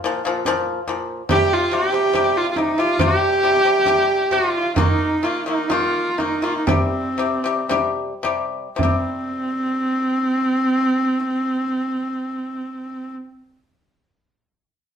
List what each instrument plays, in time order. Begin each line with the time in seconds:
0.04 pipa A#2 F3, frame drum
0.25 pipa A#2 F3
0.45 pipa A#2 F3, frame drum
0.87 pipa A#2 F3, frame drum
1.29 pipa C3 G3, horsehead fiddle G4, frame drum
1.53 horsehead fiddle F4
1.71 pipa C3 G3, horsehead fiddle G4, frame drum
1.92 pipa C3 G3
2.13 pipa C3 G3, frame drum
2.37 horsehead fiddle F4
2.51 horsehead fiddle F4
2.56 pipa C3 G3, horsehead fiddle D#4, frame drum
2.78 pipa C3 G3, horsehead fiddle F4
2.99 pipa C3 G3, horsehead fiddle G4, frame drum
3.43 pipa C3 G3, frame drum
3.65 pipa C3 G3
3.86 pipa C3 G3, frame drum
4.31 pipa C3 G3, horsehead fiddle F#4, frame drum
4.49 horsehead fiddle F4
4.76 pipa D#3 A#3, horsehead fiddle D#4, frame drum
5.23 pipa D#3 A#3, horsehead fiddle F4, frame drum
5.46 pipa D#3 A#3, horsehead fiddle D#4
5.69 pipa D#3 A#3, horsehead fiddle F4, frame drum
6.18 pipa D#3 A#3, horsehead fiddle D#4, frame drum
6.42 pipa D#3 A#3, horsehead fiddle F4
6.57 horsehead fiddle D#4
6.67 pipa C3 G3, horsehead fiddle C4, frame drum
7.18 pipa C3 G3, frame drum
7.44 pipa C3 G3
7.69 pipa C3 G3, frame drum
8.23 pipa C3 G3, frame drum
8.76 pipa C3, horsehead fiddle C4, frame drum
8.83 pipa G3